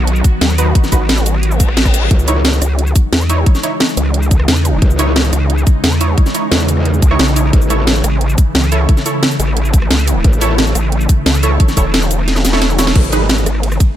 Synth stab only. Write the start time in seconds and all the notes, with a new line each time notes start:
0.58 D#4 F#4 B4
0.92 D#4 F#4 B4
2.28 D#4 E4 C#5
3.29 D#4 E4 C#5
3.63 D#4 E4 C#5
4.99 D#4 E4 C#5
6.01 D#4 E4 C#5
6.35 D#4 E4 C#5
7.11 D#4 E4 C#5
7.36 D#4 E4 C#5
7.70 E4 A4 C#5
8.72 E4 A4 C#5
9.06 E4 A4 C#5
10.41 E4 A4 C#5
11.43 E4 A4 C#5
11.77 E4 A4 C#5
12.53 E4 A4 C#5
12.79 E4 A4 C#5
13.13 D#4 G#4 B4